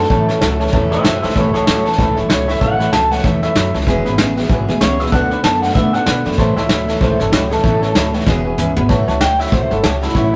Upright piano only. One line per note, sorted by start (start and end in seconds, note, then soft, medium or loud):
0.10 0.21 C#5 medium
0.10 0.22 E5 medium
0.10 0.22 A5 medium
0.28 0.36 C#5 medium
0.28 0.36 E5 medium
0.28 0.36 A5 medium
0.41 0.52 C#5 medium
0.41 0.53 E5 medium
0.41 0.53 A5 loud
0.60 0.68 C#5 medium
0.60 0.68 E5 medium
0.60 0.68 A5 loud
0.72 0.84 C#5 medium
0.72 0.84 E5 medium
0.72 0.84 A5 loud
0.90 0.99 C#5 medium
0.90 0.99 E5 medium
0.90 0.99 A5 medium
1.03 1.15 C#5 loud
1.03 1.15 E5 medium
1.03 1.15 A5 loud
1.22 1.30 C#5 medium
1.22 1.30 E5 medium
1.22 1.31 A5 medium
1.35 1.47 C#5 medium
1.35 1.47 E5 medium
1.35 1.47 B5 loud
1.54 1.62 C#5 medium
1.54 1.62 E5 medium
1.54 1.62 A5 loud
1.66 1.78 C#5 medium
1.66 1.78 E5 medium
1.66 1.78 F#5 medium
1.85 1.93 C#5 medium
1.85 1.93 E5 medium
1.85 1.93 A5 medium
1.97 2.09 C#5 medium
1.97 2.09 E5 medium
1.97 2.09 B5 medium
2.17 2.24 C#5 medium
2.17 2.25 E5 medium
2.17 2.25 B5 medium
2.29 2.41 C#5 loud
2.29 2.41 E5 medium
2.29 2.41 B5 loud
2.48 2.56 C#5 medium
2.48 2.56 E5 medium
2.48 2.56 B5 medium
2.61 2.72 C#5 medium
2.61 2.72 E5 medium
2.61 2.73 A5 loud
2.79 2.87 C#5 medium
2.79 2.87 E5 medium
2.79 2.88 B5 loud
2.93 3.04 C#5 medium
2.93 3.04 A5 medium
3.11 3.19 C#5 medium
3.11 3.19 E5 medium
3.11 3.19 A5 medium
3.24 3.35 C#5 medium
3.24 3.36 E5 medium
3.24 3.36 A5 medium
3.43 3.50 C#5 medium
3.43 3.51 E5 medium
3.43 3.51 B5 medium
3.55 3.67 C#5 loud
3.55 3.67 E5 medium
3.55 3.67 B5 loud
3.74 3.82 C#5 medium
3.74 3.82 E5 medium
3.74 3.82 A5 medium
3.87 3.98 B4 loud
3.87 3.98 E5 loud
3.87 3.98 G#5 loud
4.05 4.13 B4 loud
4.05 4.13 E5 medium
4.05 4.14 B5 loud
4.18 4.29 B4 medium
4.18 4.30 E5 medium
4.18 4.30 G#5 medium
4.37 4.45 B4 medium
4.37 4.45 E5 medium
4.37 4.45 F#5 loud
4.50 4.61 B4 medium
4.50 4.61 E5 medium
4.50 4.61 G#5 loud
4.68 4.76 B4 medium
4.68 4.76 E5 medium
4.68 4.76 G#5 loud
4.81 4.92 B4 medium
4.81 4.92 E5 medium
4.81 4.93 F#5 loud
4.99 5.07 B4 medium
4.99 5.07 E5 medium
4.99 5.08 B5 medium
5.12 5.23 D5 loud
5.12 5.24 F#5 medium
5.12 5.24 A5 loud
5.31 5.39 D5 medium
5.31 5.39 F#5 medium
5.31 5.39 B5 loud
5.43 5.55 D5 medium
5.43 5.55 F#5 medium
5.43 5.55 A5 medium
5.62 5.70 D5 medium
5.62 5.70 F#5 medium
5.62 5.70 A5 medium
5.75 5.86 D5 medium
5.75 5.86 F#5 medium
5.75 5.87 B5 medium
5.94 6.02 D5 medium
5.94 6.02 F#5 medium
5.94 6.02 A5 medium
6.06 6.18 D5 loud
6.06 6.18 F#5 medium
6.06 6.18 B5 loud
6.25 6.33 D5 medium
6.25 6.33 F#5 medium
6.25 6.33 B5 medium
6.38 6.49 C#5 loud
6.38 6.49 E5 medium
6.38 6.50 A5 loud
6.57 6.65 C#5 medium
6.57 6.65 E5 medium
6.57 6.65 A5 loud
6.70 6.81 C#5 medium
6.70 6.81 B5 medium
6.88 6.96 C#5 medium
6.88 6.96 E5 medium
6.88 6.96 A5 medium
7.01 7.12 C#5 medium
7.01 7.12 E5 medium
7.01 7.13 A5 medium
7.19 7.27 C#5 medium
7.19 7.27 E5 medium
7.19 7.27 A5 medium
7.32 7.43 C#5 loud
7.32 7.44 E5 medium
7.32 7.44 B5 loud
7.50 7.58 C#5 medium
7.50 7.59 E5 medium
7.50 7.59 A5 medium
7.63 7.75 C#5 medium
7.63 7.75 E5 medium
7.63 7.75 A5 loud
7.82 7.90 C#5 medium
7.82 7.90 E5 medium
7.82 7.90 A5 loud
7.95 8.06 C#5 medium
7.95 8.07 E5 medium
7.95 8.07 B5 medium
8.14 8.22 C#5 medium
8.14 8.22 E5 medium
8.14 8.22 F#5 medium
8.27 8.38 B4 medium
8.27 8.38 E5 medium
8.27 8.38 G#5 loud
8.45 8.53 B4 medium
8.45 8.53 E5 medium
8.45 8.53 G#5 loud
8.58 8.69 B4 loud
8.58 8.69 E5 loud
8.58 8.70 G#5 loud
8.77 8.84 B4 medium
8.77 8.84 E5 medium
8.77 8.85 B5 loud
8.89 9.00 C#5 loud
8.89 9.01 E5 loud
8.89 9.01 A5 loud
9.08 9.16 C#5 loud
9.08 9.16 E5 loud
9.08 9.16 A5 loud
9.20 9.32 C#5 medium
9.39 9.47 C#5 medium
9.39 9.47 E5 medium
9.39 9.47 B5 medium
9.52 9.63 C#5 medium
9.52 9.64 E5 medium
9.52 9.64 F#5 medium
9.71 9.78 C#5 medium
9.71 9.79 E5 medium
9.71 9.79 B5 medium
9.84 9.95 C#5 medium
9.84 9.95 E5 medium
9.84 9.95 A5 loud
10.03 10.10 C#5 medium
10.03 10.10 E5 medium
10.03 10.11 A5 medium
10.15 10.26 C#5 medium
10.15 10.26 E5 medium
10.15 10.27 F#5 loud